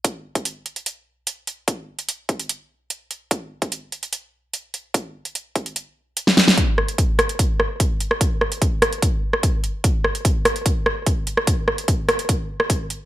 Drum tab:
HH |x--xx-xxx---x-x-|x--xx-xxx---x-x-|x--xx-xxx---x-x-|x--xx-xxx---x-x-|
SD |----------------|----------------|----------------|-------------ooo|
BD |o--o------------|o-----o---------|o--o------------|o-----o---------|

HH |x--xx-xxx---x-x-|x--xx-xxx---x-x-|x--xx-xxx---x-x-|x--xx-xxx---x-x-|
SD |--r---r---r----r|--r---r----r----|--r---r---r----r|--r---r----r----|
BD |o---o---o---o---|o---o---o---o---|o---o---o---o---|o---o---o---o---|